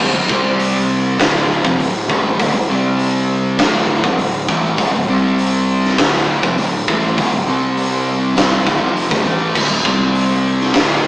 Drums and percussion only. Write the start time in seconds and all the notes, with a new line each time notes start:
0.29 kick
0.60 open hi-hat
1.20 kick, snare, open hi-hat
1.65 kick
1.80 open hi-hat
2.10 kick
2.40 kick, open hi-hat
2.99 open hi-hat
3.59 kick, snare, open hi-hat
4.04 kick
4.19 open hi-hat
4.49 kick
4.78 kick, open hi-hat
5.38 open hi-hat
5.85 snare
5.98 kick, snare, open hi-hat
6.43 kick
6.58 open hi-hat
6.88 kick
7.18 kick, open hi-hat
7.77 open hi-hat
8.37 snare, open hi-hat
8.67 kick
8.97 open hi-hat
9.11 kick
9.55 kick, crash
9.85 kick
10.15 open hi-hat
10.61 snare
10.74 kick, snare, open hi-hat